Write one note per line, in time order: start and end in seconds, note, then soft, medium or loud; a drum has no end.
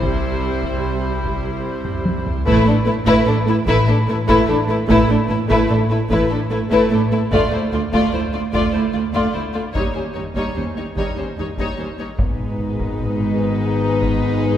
0.00 2.46 C2 soft
0.00 2.46 C3 medium
0.00 2.42 G3 soft
0.00 2.42 E4 medium
0.00 2.42 C5 medium
0.00 taiko medium
0.63 taiko medium
1.24 taiko medium
1.85 taiko low-mid medium
2.05 taiko high medium
2.26 taiko low medium
2.45 2.54 A1 medium
2.45 2.53 A2 medium
2.45 2.64 A3 medium
2.45 2.65 E4 medium
2.45 2.64 B4 medium
2.45 taiko medium
2.65 2.74 A2 medium
2.65 2.73 A3 soft
2.65 2.76 D4 medium
2.65 2.75 A4 medium
2.85 2.94 A1 medium
2.85 2.94 A2 medium
2.85 2.94 A3 medium
2.85 2.95 E4 medium
2.85 2.93 B4 soft
3.06 3.14 A2 medium
3.06 3.24 A3 medium
3.06 3.26 E4 medium
3.06 3.26 B4 medium
3.06 taiko medium
3.26 3.35 A1 medium
3.26 3.34 A2 medium
3.26 3.34 A3 medium
3.26 3.36 D4 medium
3.26 3.35 A4 medium
3.46 3.54 A2 medium
3.46 3.54 A3 soft
3.46 3.56 E4 medium
3.46 3.55 B4 medium
3.66 3.74 A1 medium
3.66 3.74 A2 medium
3.66 3.86 A3 medium
3.66 3.86 E4 medium
3.66 3.87 B4 medium
3.66 taiko medium
3.86 3.94 A2 medium
3.86 3.95 A3 medium
3.86 3.96 D4 medium
3.86 3.96 A4 medium
4.07 4.16 A1 medium
4.07 4.15 A2 medium
4.07 4.16 A3 medium
4.07 4.17 E4 medium
4.07 4.17 B4 medium
4.28 4.36 A2 medium
4.28 4.47 A3 medium
4.28 4.47 E4 medium
4.28 4.47 B4 medium
4.28 taiko medium
4.47 4.55 A1 soft
4.47 4.56 A2 medium
4.47 4.56 A3 medium
4.47 4.57 D4 medium
4.47 4.56 A4 medium
4.68 4.76 A2 medium
4.68 4.76 A3 medium
4.68 4.78 E4 medium
4.68 4.76 B4 medium
4.88 4.96 A1 medium
4.88 4.96 A2 medium
4.88 5.07 A3 medium
4.88 5.09 E4 medium
4.88 5.08 B4 medium
4.88 taiko medium
5.09 5.17 A2 medium
5.09 5.17 A3 soft
5.09 5.19 D4 soft
5.09 5.17 A4 soft
5.28 5.37 A1 soft
5.28 5.37 A2 soft
5.28 5.37 A3 soft
5.28 5.38 E4 medium
5.28 5.36 B4 soft
5.49 5.57 A2 medium
5.49 5.68 A3 medium
5.49 5.70 E4 medium
5.49 5.69 B4 medium
5.49 taiko medium
5.69 5.77 A1 soft
5.69 5.77 A2 soft
5.69 5.77 A3 soft
5.69 5.79 D4 soft
5.69 5.78 A4 soft
5.89 5.97 A2 soft
5.89 5.98 A3 soft
5.89 5.99 E4 soft
5.89 5.98 B4 soft
6.10 6.18 A1 medium
6.10 6.18 A2 medium
6.10 6.29 A3 medium
6.10 6.30 E4 medium
6.10 6.29 B4 medium
6.10 taiko medium
6.30 6.38 A2 soft
6.30 6.38 A3 medium
6.30 6.39 D4 soft
6.30 6.39 A4 soft
6.50 6.59 A1 soft
6.50 6.59 A2 soft
6.50 6.59 A3 medium
6.50 6.59 E4 medium
6.50 6.58 B4 medium
6.70 6.79 A2 medium
6.70 6.89 A3 medium
6.70 6.91 E4 medium
6.70 6.90 B4 medium
6.70 taiko medium
6.91 6.99 A1 soft
6.91 6.99 A2 soft
6.91 6.99 A3 medium
6.91 7.00 D4 soft
6.91 6.99 A4 soft
7.12 7.20 A2 soft
7.12 7.20 A3 soft
7.12 7.20 E4 soft
7.12 7.20 B4 medium
7.31 7.39 D2 medium
7.31 7.40 D2 medium
7.31 7.50 A3 medium
7.31 7.51 F4 medium
7.31 7.51 D5 medium
7.31 taiko medium
7.51 7.60 D2 soft
7.51 7.59 A3 soft
7.51 7.61 E4 soft
7.51 7.60 C5 soft
7.72 7.80 D2 soft
7.72 7.81 D2 soft
7.72 7.80 A3 soft
7.72 7.81 F4 soft
7.72 7.81 D5 soft
7.93 8.01 D2 medium
7.93 8.12 A3 medium
7.93 8.12 F4 soft
7.93 8.12 D5 medium
7.93 taiko medium
8.13 8.21 D2 soft
8.13 8.22 D2 soft
8.13 8.21 A3 soft
8.13 8.22 E4 soft
8.13 8.21 C5 soft
8.33 8.41 D2 soft
8.33 8.42 A3 soft
8.33 8.41 F4 soft
8.33 8.41 D5 soft
8.53 8.61 D2 soft
8.53 8.73 A3 soft
8.53 8.73 F4 soft
8.53 8.72 D5 soft
8.53 taiko medium
8.72 8.82 D2 soft
8.72 8.82 A3 soft
8.72 8.82 E4 soft
8.72 8.80 C5 soft
8.93 9.01 D2 soft
8.93 9.02 A3 soft
8.93 9.02 F4 soft
8.93 9.01 D5 soft
9.13 9.21 D2 soft
9.13 9.34 A3 soft
9.13 9.33 F4 soft
9.13 9.33 D5 soft
9.13 taiko medium
9.34 9.42 D2 soft
9.34 9.43 A3 soft
9.34 9.42 E4 soft
9.34 9.42 C5 soft
9.54 9.62 D2 soft
9.54 9.64 A3 soft
9.54 9.62 F4 soft
9.54 9.62 D5 soft
9.74 9.82 D#2 soft
9.74 9.83 D#2 soft
9.74 9.95 G3 soft
9.74 9.94 D#4 soft
9.74 9.94 C#5 soft
9.74 taiko medium
9.95 10.03 D#2 soft
9.95 10.04 G3 soft
9.95 10.04 C#4 soft
9.95 10.03 C5 soft
10.14 10.23 D#2 soft
10.14 10.24 G3 soft
10.14 10.24 D#4 soft
10.14 10.22 C#5 soft
10.34 10.42 D#2 soft
10.34 10.55 G3 soft
10.34 10.56 D#4 soft
10.34 10.55 C#5 soft
10.34 taiko medium
10.55 10.63 D#2 soft
10.55 10.64 G3 soft
10.55 10.65 C#4 soft
10.55 10.64 C5 soft
10.75 10.83 D#2 soft
10.75 10.85 G3 soft
10.75 10.86 D#4 soft
10.75 10.85 C#5 soft
10.95 11.03 D#2 soft
10.95 11.04 D#2 soft
10.95 11.16 G3 soft
10.95 11.17 D#4 soft
10.95 11.16 C#5 soft
10.95 taiko medium
11.16 11.24 D#2 soft
11.16 11.26 G3 soft
11.16 11.26 C#4 soft
11.16 11.26 C5 soft
11.37 11.45 D#2 soft
11.37 11.47 G3 soft
11.37 11.47 D#4 soft
11.37 11.47 C#5 soft
11.57 11.65 D#2 soft
11.57 11.77 G3 soft
11.57 11.78 D#4 soft
11.57 11.77 C#5 soft
11.57 taiko medium
11.77 11.85 D#2 soft
11.77 11.86 D#2 soft
11.77 11.88 G3 soft
11.77 11.88 C#4 soft
11.77 11.87 C5 soft
11.98 12.06 D#2 soft
11.98 12.08 G3 soft
11.98 12.08 D#4 soft
11.98 12.07 C#5 soft
12.18 14.57 G#1 soft
12.18 14.57 G#2 medium
12.18 14.57 G#3 medium
12.18 14.57 B3 medium
12.18 14.57 D#4 medium
12.18 14.57 B4 medium
12.18 taiko medium
12.39 taiko mid soft
12.59 taiko mid soft
12.80 taiko medium
13.00 taiko mid medium
13.20 taiko mid soft
14.02 taiko medium